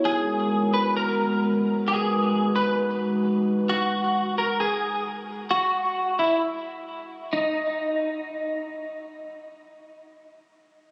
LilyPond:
<<
  \new Staff \with { instrumentName = "Clean electric guitar" } { \time 4/4 \key gis \minor \tempo 4 = 132 gis'4. b'8 ais'4 r4 | gis'4. b'8 r2 | fis'4. ais'8 gis'4 r4 | fis'4. e'8 r2 |
dis'2. r4 | r1 | }
  \new Staff \with { instrumentName = "Glass harmonica" } { \time 4/4 \key gis \minor << { <b ais'>1 | <dis' b'>1 | r1 | r1 |
r1 | r1 | } \\ { <gis fis'>1~ | <gis fis'>1 | r1 | r1 |
r1 | r1 | } >> }
>>